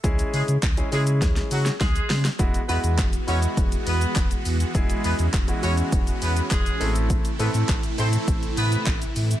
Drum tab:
HH |xxoxxxoxxxoxxxox|xxoxxxoxxxoxxxox|xxoxxxoxxxoxxxox|xxoxxxoxxxoxxxox|
SH |xxxxxxxxxxxxxxxx|xxxxxxxxxxxxxxxx|xxxxxxxxxxxxxxxx|xxxxxxxxxxxxxxxx|
CP |----x-----------|----x-------x---|----x-------x---|----x-------x---|
SD |--------oo-oo-oo|----------------|----------------|----------------|
BD |o---o---o---o---|o---o---o---o---|o---o---o---o---|o---o---o---o---|